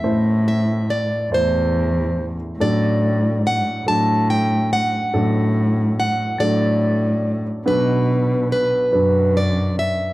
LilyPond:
<<
  \new Staff \with { instrumentName = "Steel-string acoustic guitar" } { \time 6/8 \key d \mixolydian \tempo 4. = 47 e''8 e''8 d''8 c''4 r8 | d''4 fis''8 a''8 g''8 fis''8~ | fis''4 fis''8 d''4 r8 | b'4 b'4 d''8 e''8 | }
  \new Staff \with { instrumentName = "Upright piano" } { \time 6/8 \key d \mixolydian <a e' c''>4 r8 <a e' c''>4 r8 | <fis d' a'>4 r8 <fis d' a'>4 r8 | <fis d' a'>4 r8 <fis d' a'>4 r8 | <fis d' b'>4 r8 <fis d' b'>4 r8 | }
  \new Staff \with { instrumentName = "Upright piano" } { \clef bass \time 6/8 \key d \mixolydian <a,, a,>2. | <a,, a,>2. | <a,, a,>2. | <b,, b,>2. | }
  \new Staff \with { instrumentName = "Cello" } { \clef bass \time 6/8 \key d \mixolydian a,4. e,4. | a,4. a,4. | a,4. a,4. | b,4. fis,4. | }
>>